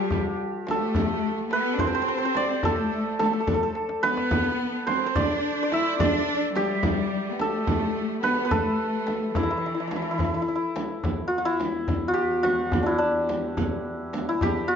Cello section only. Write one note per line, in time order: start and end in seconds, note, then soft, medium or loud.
0.00 0.35 G3 medium
0.67 1.47 A3 medium
1.52 1.72 B3 medium
1.74 1.80 D4 medium
1.80 2.64 C4 medium
2.64 3.19 A3 medium
3.20 3.72 A3 medium
4.04 4.84 B3 medium
4.89 5.16 C4 medium
5.18 5.73 D4 medium
5.72 5.99 E4 medium
6.00 6.52 D4 medium
6.55 7.32 G3 medium
7.32 7.39 B3 medium
7.40 8.24 A3 medium
8.23 8.49 B3 medium
8.52 9.36 A3 medium
9.35 10.76 E3 medium